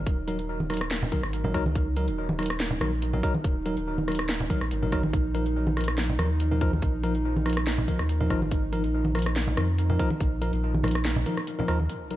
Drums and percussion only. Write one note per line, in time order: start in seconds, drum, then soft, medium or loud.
0.06 kick loud
0.06 closed hi-hat medium
0.28 closed hi-hat medium
0.39 closed hi-hat soft
0.60 high conga medium
0.70 cross-stick soft
0.70 closed hi-hat medium
0.74 closed hi-hat medium
0.77 closed hi-hat medium
0.81 cross-stick medium
0.91 snare loud
0.91 closed hi-hat medium
1.02 low conga medium
1.12 kick medium
1.12 closed hi-hat medium
1.12 high conga medium
1.23 cross-stick medium
1.33 closed hi-hat medium
1.44 low conga medium
1.54 kick medium
1.54 cross-stick medium
1.54 closed hi-hat medium
1.66 high conga medium
1.75 kick loud
1.75 closed hi-hat medium
1.96 closed hi-hat soft
2.08 closed hi-hat soft
2.29 high conga loud
2.39 cross-stick soft
2.39 closed hi-hat soft
2.43 closed hi-hat medium
2.46 closed hi-hat medium
2.50 cross-stick medium
2.60 snare loud
2.60 closed hi-hat medium
2.71 low conga medium
2.81 cross-stick medium
2.81 closed hi-hat medium
2.81 high conga medium
3.02 closed hi-hat medium
3.13 low conga medium
3.23 kick loud
3.23 closed hi-hat medium
3.34 high conga loud
3.44 kick loud
3.44 closed hi-hat medium
3.66 closed hi-hat medium
3.77 closed hi-hat soft
3.98 high conga medium
4.08 cross-stick medium
4.08 closed hi-hat soft
4.12 closed hi-hat medium
4.15 closed hi-hat medium
4.19 cross-stick medium
4.29 snare loud
4.29 closed hi-hat medium
4.40 low conga medium
4.50 kick medium
4.50 closed hi-hat medium
4.50 high conga medium
4.61 cross-stick medium
4.71 closed hi-hat medium
4.83 low conga medium
4.92 kick medium
4.92 cross-stick medium
4.92 closed hi-hat medium
5.03 high conga loud
5.13 kick loud
5.13 closed hi-hat medium
5.35 closed hi-hat soft
5.46 closed hi-hat soft
5.67 high conga loud
5.77 cross-stick medium
5.77 closed hi-hat soft
5.81 closed hi-hat medium
5.84 closed hi-hat medium
5.88 cross-stick medium
5.98 snare loud
5.98 closed hi-hat medium
6.09 low conga medium
6.19 cross-stick medium
6.19 closed hi-hat soft
6.19 high conga medium
6.40 closed hi-hat medium
6.52 low conga medium
6.61 kick loud
6.61 closed hi-hat medium
6.73 high conga medium
6.82 kick loud
6.82 closed hi-hat medium
7.03 closed hi-hat medium
7.15 closed hi-hat soft
7.36 high conga medium
7.46 cross-stick medium
7.46 closed hi-hat soft
7.49 closed hi-hat medium
7.53 closed hi-hat medium
7.57 cross-stick medium
7.67 snare loud
7.67 closed hi-hat medium
7.78 low conga medium
7.88 kick medium
7.88 closed hi-hat soft
7.88 high conga medium
7.99 cross-stick medium
8.09 closed hi-hat medium
8.21 low conga medium
8.30 kick medium
8.30 cross-stick medium
8.30 closed hi-hat medium
8.42 high conga medium
8.51 kick loud
8.51 closed hi-hat medium
8.73 closed hi-hat medium
8.84 closed hi-hat soft
9.05 high conga medium
9.15 cross-stick medium
9.15 closed hi-hat soft
9.19 closed hi-hat medium
9.22 closed hi-hat medium
9.26 cross-stick medium
9.36 snare loud
9.36 closed hi-hat medium
9.47 low conga medium
9.57 cross-stick medium
9.57 closed hi-hat soft
9.57 high conga medium
9.78 closed hi-hat medium
9.90 low conga medium
9.99 kick loud
9.99 closed hi-hat medium
10.10 high conga medium
10.20 kick loud
10.20 closed hi-hat medium
10.42 closed hi-hat medium
10.53 closed hi-hat soft
10.74 high conga medium
10.83 cross-stick medium
10.83 closed hi-hat soft
10.83 low conga medium
10.88 closed hi-hat medium
10.91 closed hi-hat medium
10.95 cross-stick medium
11.05 snare loud
11.05 closed hi-hat medium
11.16 low conga medium
11.26 closed hi-hat medium
11.26 high conga medium
11.37 cross-stick medium
11.47 closed hi-hat medium
11.60 low conga medium
11.68 cross-stick medium
11.68 closed hi-hat medium
11.80 high conga medium
11.89 closed hi-hat medium
12.11 closed hi-hat medium